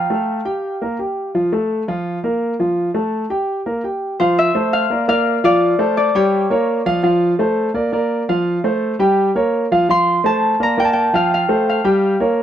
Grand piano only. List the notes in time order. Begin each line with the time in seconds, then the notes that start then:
0.10 A3 A4
0.45 G4 G5
0.81 A#3 A#4
0.99 G4 G5
1.35 F3 F4
1.52 A3 A4
1.88 F3 F4
2.24 A#3 A#4
2.59 F3 F4
2.94 A3 A4
3.30 G4 G5
3.66 A#3 A#4
3.84 G4 G5
4.20 F3 F4 F5
4.55 A3 A4 C5
4.90 A#3 A#4 D5
5.08 A#3 A#4 D5
5.44 F3 F4 F5
5.79 A3 A4 C5
6.15 G3 G4 G5
6.50 A#3 A#4 C#5
6.86 F3 F4 F5
7.03 F3 F4 F5
7.39 A3 A4 C5
7.74 A#3 A#4 D5
7.92 A#3 A#4 D5
8.29 F3 F4 F5
8.64 A3 A4 C5
8.99 G3 G4 G5
9.35 A#3 A#4 C#5
9.71 F3 F4 F5
9.89 F3 F4 F5
10.24 A3 A4 C5
10.60 A#3 A#4 D5
10.77 A#3 A#4 D5
11.13 F3 F4 F5
11.49 A3 A4 C5
11.84 G3 G4 G5
12.20 A#3 A#4 C#5